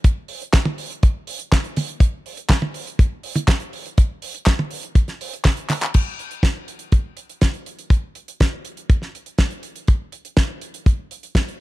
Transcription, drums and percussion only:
0.04 kick, closed hi-hat
0.28 open hi-hat
0.42 closed hi-hat
0.53 kick, snare, clap, closed hi-hat
0.65 high tom
0.78 open hi-hat
0.91 closed hi-hat
1.03 kick, closed hi-hat
1.27 open hi-hat
1.39 closed hi-hat
1.52 kick, snare, clap, closed hi-hat
1.64 closed hi-hat
1.76 open hi-hat, high tom
1.88 closed hi-hat
2.00 kick, closed hi-hat
2.26 open hi-hat
2.37 closed hi-hat
2.50 kick, snare, clap, closed hi-hat
2.62 high tom
2.74 open hi-hat
2.87 closed hi-hat
2.99 kick, closed hi-hat
3.23 open hi-hat
3.35 closed hi-hat, high tom
3.48 kick, snare, clap, closed hi-hat
3.60 closed hi-hat
3.73 open hi-hat
3.86 closed hi-hat
3.98 kick, closed hi-hat
4.22 open hi-hat
4.35 closed hi-hat
4.46 kick, snare, clap, closed hi-hat
4.59 high tom
4.71 open hi-hat
4.83 closed hi-hat
4.95 kick, closed hi-hat
5.08 snare, closed hi-hat
5.21 open hi-hat
5.34 closed hi-hat
5.44 kick, snare, clap, open hi-hat
5.57 closed hi-hat
5.69 clap, open hi-hat, high tom
5.82 clap, closed hi-hat
5.94 kick, closed hi-hat, crash
6.19 closed hi-hat
6.31 closed hi-hat
6.43 kick, snare, closed hi-hat
6.68 closed hi-hat
6.79 closed hi-hat
6.92 kick, closed hi-hat
7.17 closed hi-hat
7.30 closed hi-hat
7.41 kick, snare, closed hi-hat
7.54 closed hi-hat
7.66 closed hi-hat
7.79 closed hi-hat
7.90 kick, closed hi-hat
8.15 closed hi-hat
8.28 closed hi-hat
8.40 kick, snare, closed hi-hat
8.65 closed hi-hat
8.77 closed hi-hat
8.90 kick, closed hi-hat
9.02 snare
9.15 closed hi-hat
9.26 closed hi-hat
9.38 kick, snare, closed hi-hat
9.51 closed hi-hat
9.63 closed hi-hat
9.76 closed hi-hat
9.87 kick, closed hi-hat
10.12 closed hi-hat
10.25 closed hi-hat
10.37 kick, snare, closed hi-hat
10.61 closed hi-hat
10.74 closed hi-hat
10.86 kick, closed hi-hat
11.11 closed hi-hat
11.23 closed hi-hat
11.35 kick, snare, closed hi-hat
11.48 closed hi-hat

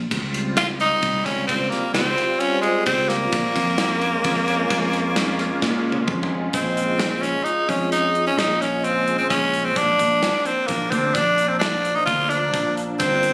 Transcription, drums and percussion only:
0.11 kick, ride
0.34 ride
0.57 snare, ride
0.80 snare, ride
1.02 kick, ride
1.26 kick, snare, ride
1.49 kick, ride
1.72 snare, ride
1.95 snare, ride
2.18 ride
2.40 ride
2.63 ride
2.86 kick, ride
3.10 snare, ride
3.32 kick, ride
3.56 kick, ride
3.78 snare, ride
4.01 ride
4.24 kick, ride
4.48 ride
4.70 kick, snare, ride
4.93 ride
5.16 snare, ride
5.39 snare, ride
5.62 kick, snare
5.92 high tom
6.08 kick, mid tom
6.23 mid tom
6.53 kick, closed hi-hat
6.77 closed hi-hat
6.99 snare, closed hi-hat
7.23 snare, closed hi-hat
7.46 closed hi-hat
7.69 kick, closed hi-hat
7.92 closed hi-hat
8.15 closed hi-hat
8.39 snare, closed hi-hat
8.62 snare, closed hi-hat
8.84 closed hi-hat
9.08 closed hi-hat
9.30 kick, snare, closed hi-hat
9.54 closed hi-hat
9.76 kick, closed hi-hat
9.99 kick, closed hi-hat
10.23 snare, closed hi-hat
10.45 closed hi-hat
10.68 kick, closed hi-hat
10.92 kick, closed hi-hat
11.15 kick, closed hi-hat
11.38 closed hi-hat
11.61 snare, closed hi-hat
11.85 closed hi-hat
12.07 kick, closed hi-hat
12.30 closed hi-hat
12.54 kick, closed hi-hat
12.77 closed hi-hat
13.00 kick, closed hi-hat
13.23 closed hi-hat

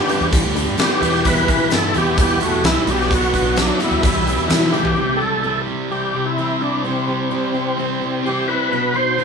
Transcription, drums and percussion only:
0.08 closed hi-hat, tambourine
0.21 tambourine
0.33 kick, closed hi-hat
0.44 tambourine
0.54 closed hi-hat, tambourine
0.78 snare, closed hi-hat, tambourine
1.01 closed hi-hat, tambourine
1.15 snare
1.25 kick, closed hi-hat
1.36 tambourine
1.48 kick, closed hi-hat
1.70 snare, closed hi-hat, tambourine
1.83 tambourine
1.94 closed hi-hat, tambourine
2.18 kick, closed hi-hat
2.29 tambourine
2.40 closed hi-hat, tambourine
2.52 tambourine
2.64 snare, closed hi-hat, tambourine
2.87 closed hi-hat, tambourine
3.01 snare
3.11 kick, closed hi-hat, tambourine
3.22 tambourine
3.34 kick, closed hi-hat
3.46 tambourine
3.56 snare, closed hi-hat, tambourine
3.68 tambourine
3.80 closed hi-hat, tambourine
4.03 kick, closed hi-hat, tambourine
4.15 tambourine
4.27 closed hi-hat, tambourine
4.50 snare, closed hi-hat, tambourine
4.73 high tom, tambourine
4.85 floor tom

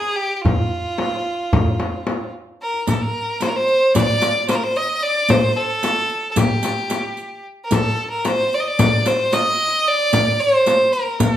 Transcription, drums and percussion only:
0.45 darbuka dum, frame drum
0.98 darbuka tek, frame drum
1.26 darbuka ka
1.53 darbuka dum, frame drum
1.80 darbuka tek, frame drum
2.07 darbuka tek, frame drum
2.74 darbuka ka
2.87 riq, frame drum
3.41 riq, frame drum
3.68 riq
3.95 riq, frame drum
4.22 riq, frame drum
4.49 riq, frame drum
4.76 riq
5.29 riq, frame drum
5.83 riq, frame drum
6.09 riq
6.36 riq, frame drum
6.63 riq, frame drum
6.90 riq, frame drum
7.17 riq
7.71 riq, frame drum
8.25 riq, frame drum
8.53 riq
8.79 riq, frame drum
9.06 riq, frame drum
9.33 riq, frame drum
10.13 riq, frame drum
10.66 riq, frame drum
10.93 riq
11.20 riq, frame drum

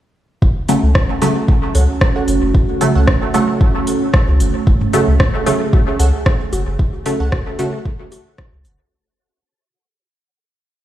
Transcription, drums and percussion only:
0.42 kick
0.69 open hi-hat
0.95 kick, cross-stick
1.22 open hi-hat
1.48 kick
1.75 open hi-hat
2.01 kick, cross-stick
2.28 open hi-hat
2.55 kick
2.81 open hi-hat
3.07 kick, cross-stick
3.34 open hi-hat
3.61 kick
3.87 open hi-hat
4.14 kick, cross-stick
4.40 open hi-hat
4.67 kick
4.81 mid tom
4.93 open hi-hat, low bongo
5.20 kick, cross-stick
5.46 open hi-hat
5.73 kick, low bongo
6.00 open hi-hat
6.26 kick, cross-stick
6.53 open hi-hat, low bongo
6.79 kick
7.06 open hi-hat
7.32 kick, cross-stick, low bongo
7.59 open hi-hat
7.85 kick
8.12 open hi-hat, low bongo
8.38 kick, cross-stick
8.65 open hi-hat

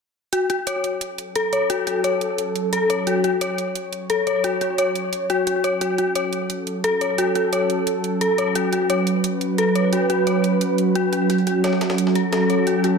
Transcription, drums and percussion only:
0.33 closed hi-hat
0.50 closed hi-hat
0.67 closed hi-hat
0.84 closed hi-hat
1.01 closed hi-hat
1.18 closed hi-hat
1.35 closed hi-hat
1.53 closed hi-hat
1.70 closed hi-hat
1.87 closed hi-hat
2.04 closed hi-hat
2.21 closed hi-hat
2.38 closed hi-hat
2.56 closed hi-hat
2.73 closed hi-hat
2.90 closed hi-hat
3.07 closed hi-hat
3.24 closed hi-hat
3.41 closed hi-hat
3.58 closed hi-hat
3.75 closed hi-hat
3.93 closed hi-hat
4.10 closed hi-hat
4.27 closed hi-hat
4.44 closed hi-hat
4.61 closed hi-hat
4.78 closed hi-hat
4.95 closed hi-hat
5.13 closed hi-hat
5.30 closed hi-hat
5.47 closed hi-hat
5.64 closed hi-hat
5.81 closed hi-hat
5.98 closed hi-hat
6.15 closed hi-hat
6.33 closed hi-hat
6.50 closed hi-hat
6.67 closed hi-hat
6.84 closed hi-hat
7.01 closed hi-hat
7.18 closed hi-hat
7.35 closed hi-hat
7.53 closed hi-hat
7.70 closed hi-hat
7.87 closed hi-hat
8.04 closed hi-hat
8.21 closed hi-hat
8.38 closed hi-hat
8.55 closed hi-hat
8.73 closed hi-hat
8.90 closed hi-hat
9.07 closed hi-hat
9.24 closed hi-hat
9.41 closed hi-hat
9.58 closed hi-hat
9.75 closed hi-hat
9.93 closed hi-hat
10.10 closed hi-hat
10.27 closed hi-hat
10.44 closed hi-hat
10.61 closed hi-hat
10.78 closed hi-hat
10.95 closed hi-hat
11.13 closed hi-hat
11.30 closed hi-hat
11.38 closed hi-hat
11.47 closed hi-hat
11.64 snare, closed hi-hat
11.73 snare
11.81 snare, closed hi-hat
11.90 snare, closed hi-hat
11.98 closed hi-hat
12.07 snare
12.15 closed hi-hat
12.33 snare, closed hi-hat
12.50 closed hi-hat
12.67 closed hi-hat
12.84 closed hi-hat

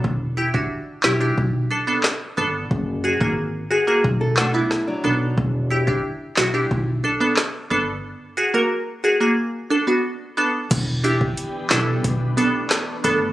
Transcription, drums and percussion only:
0.04 kick
0.54 kick
1.03 snare, clap
1.38 kick
2.03 cross-stick, snare, clap
2.71 kick
3.21 kick
4.04 kick
4.37 snare, clap
4.71 cross-stick, snare
5.38 kick
5.88 kick
6.37 snare, clap
6.71 kick
7.37 cross-stick, snare, clap
10.71 kick, closed hi-hat, crash
11.04 closed hi-hat
11.21 kick
11.37 closed hi-hat
11.70 snare, clap, closed hi-hat
12.04 kick, closed hi-hat
12.38 closed hi-hat
12.70 cross-stick, snare, clap, closed hi-hat
13.04 closed hi-hat

